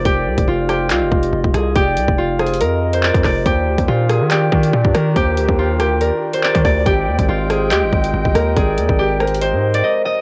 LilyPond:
<<
  \new Staff \with { instrumentName = "Soft synth lead" } { \time 4/4 \key ees \major \tempo 4 = 141 d''4. c''8 ees''2 | d''4. c''8 ees''2 | c''4. bes'8 d''2 | c''4. bes'8 d''2 |
d''4. c''8 ees''2 | d''4. c''8 ees''2 | }
  \new Staff \with { instrumentName = "Harp" } { \time 4/4 \key ees \major g'4 f'8 g'8 f'4. aes'8 | g'4 f'8 aes'8 bes'8. c''16 d''8 d''8 | g'4 f'8 aes'8 g'4. bes'8 | g'4 f'8 g'8 bes'8. c''16 d''8 d''8 |
g'4 f'8 aes'8 g'4. bes'8 | aes'4 g'8 bes'8 c''8. d''16 ees''8 ees''8 | }
  \new Staff \with { instrumentName = "Woodwind section" } { \time 4/4 \key ees \major r1 | r1 | <ees d' g'>1~ | <ees d' g'>1 |
<aes c' g''>1~ | <aes c' g''>1 | }
  \new Staff \with { instrumentName = "808-style bass" } { \clef bass \time 4/4 \key ees \major f,,8 c,16 f,,16 f,,4 c,16 f,,16 f,,8 f,,16 f,,16 c,8 | f,,8 c,16 f,,4~ f,,16 f,4~ f,16 f,16 f,,8 | ees,8 d,16 ees,16 bes,8. ees8. ees8 bes,16 g,16 ees8 | ees,8 d,16 ees,8. d,16. ees,16. r4 ees16 d,8 |
aes,,8 ees,16 aes,,16 aes,,4 ees,16 aes,,16 aes,,8 aes,,16 aes,,16 ees,8 | aes,,8 ees,16 aes,,4. aes,8. r4 | }
  \new DrumStaff \with { instrumentName = "Drums" } \drummode { \time 4/4 <hh bd>8. <hh bd>16 r8 <hh ss>8 <hc hh>8 bd16 hh16 r16 bd16 <hh ss>8 | <hh bd>8 hh16 bd16 \tuplet 3/2 { r16 r16 r16 <hh ss>16 hh16 hh16 } hh8. hh16 hc16 <hh bd>16 <hc hho bd ss>8 | <hh bd>8. <hh bd>16 r8 <hh ss>8 <hc hh>8 bd16 hh16 r16 bd16 <hh ss>8 | <hh bd>8 hh16 bd16 r8 <hh ss>8 hh8. hh16 hc16 <hh bd>16 <hho bd ss>8 |
<hh bd>8. <hh bd>16 r8 <hh ss>8 <hc hh>8 bd16 hh16 r16 bd16 <hh ss>8 | <hh bd>8 hh16 bd16 \tuplet 3/2 { r16 r16 r16 <hh ss>16 hh16 hh16 } hh8. hh16 r4 | }
>>